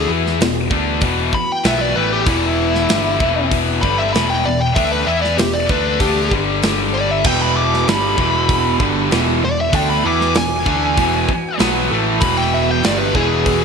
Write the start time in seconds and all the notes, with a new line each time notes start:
Already playing: E3 B3 F#4
0.08 E2 E3 B3 E4
0.27 snare
0.39 E1 E2 B2, snare, open hi-hat
0.70 D2 D3 A3 D4, kick
1.01 E1 E2 B2 E3, kick, open hi-hat
1.32 B5, muted picked electric bass stroke, muted distorted electric guitar stroke, kick
1.52 G5
1.64 B1 B2 F#3 B3 E5, snare, open hi-hat
1.81 D5
1.96 A1 A2 E3 A3 B4
2.13 G4
2.26 E1 E2 B2 E3 E4 B4, kick, open hi-hat
2.75 snare
2.89 G1 G2 D3 G3, snare, open hi-hat
3.19 E1 E2 B2 E3, kick
3.51 kick, open hi-hat
3.81 G1 G2 D3 G3 B5, kick
3.98 E5
4.13 E1 E2 B2 E3 B5, snare, open hi-hat
4.30 G5
4.45 E1 E2 B2 D5
4.61 G5
4.75 D2 D3 A3 D4 E5, kick, open hi-hat
4.92 B4
5.07 E2 E3 B3 E4 E5
5.22 D5, snare
5.38 E1 E2 B2 G4, snare, open hi-hat
5.53 D5
5.69 D2 D3 A3 D4 B4, kick
6.00 D2 D3 A3 D4 G4, kick, open hi-hat
6.31 G1 G2 D3 G3 D4 A4, kick
6.62 snare, open hi-hat
6.94 D5
7.11 E5
7.24 E1 E2 B2 E3 B3 F#4 G5, kick, crash
7.42 B5
7.57 D6
7.74 snare
7.87 G1 G2 D3 G3 B5, snare, open hi-hat
8.17 E1 E2 B2 E3, kick
8.49 kick, open hi-hat
8.80 G1 G2 D3 G3, kick
9.11 E1 E2 B2 E3, snare, open hi-hat
9.42 E1 E2 B2 D5
9.61 E5
9.72 D2 D3 A3 D4 G5, kick, open hi-hat
9.90 B5
10.03 E2 E3 B3 E4 D6
10.21 snare
10.34 E1 E2 B2 G#5, snare, open hi-hat
10.66 D2 D3 A3 D4, kick
10.97 E1 E2 B2 E3, kick, open hi-hat
11.28 muted picked electric bass stroke, muted distorted electric guitar stroke, kick
11.59 B1 B2 F#3 B3, snare, open hi-hat
11.92 A1 A2 E3 A3
12.21 E1 E2 B2 E3 C#5 B5, kick, open hi-hat
12.37 G5
12.54 E5
12.71 G5
12.84 G1 G2 D3 G3 D5, snare, open hi-hat
12.98 B4
13.15 E1 E2 B2 E3 G#4, kick
13.46 kick, open hi-hat